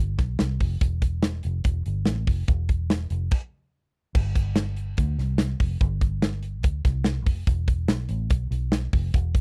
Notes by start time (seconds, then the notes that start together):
Already playing: G1
0.18 B1, kick, snare, closed hi-hat
0.39 C2, snare, closed hi-hat
0.60 F1, kick, open hi-hat
0.81 E1, kick, closed hi-hat
1.02 kick, closed hi-hat
1.23 snare, closed hi-hat
1.43 F1, closed hi-hat
1.64 E1, kick, closed hi-hat
1.86 G1, closed hi-hat
2.05 A1, snare, closed hi-hat
2.27 F1, kick, open hi-hat
2.48 E1, kick, closed hi-hat
2.69 kick, closed hi-hat
2.90 snare, closed hi-hat
3.10 F1, closed hi-hat
3.31 kick, crash
4.15 G1, kick, crash
4.36 kick, closed hi-hat
4.56 snare, closed hi-hat
4.76 closed hi-hat
4.97 D2, kick, closed hi-hat
5.18 C2, snare, closed hi-hat
5.38 snare, closed hi-hat
5.60 F1, kick, open hi-hat
5.81 G1, kick, closed hi-hat
6.01 kick, closed hi-hat
6.22 snare, closed hi-hat
6.43 closed hi-hat
6.63 D2, kick, closed hi-hat
6.85 C2, kick, snare, closed hi-hat
7.04 snare, closed hi-hat
7.26 F1, kick, open hi-hat
7.47 E1, kick, closed hi-hat
7.68 kick, closed hi-hat
7.88 B1, snare, closed hi-hat
8.09 A1, closed hi-hat
8.30 B1, kick, closed hi-hat
8.51 B1, closed hi-hat
8.72 snare, closed hi-hat
8.93 F1, kick, open hi-hat
9.14 E1, kick, closed hi-hat
9.35 kick, closed hi-hat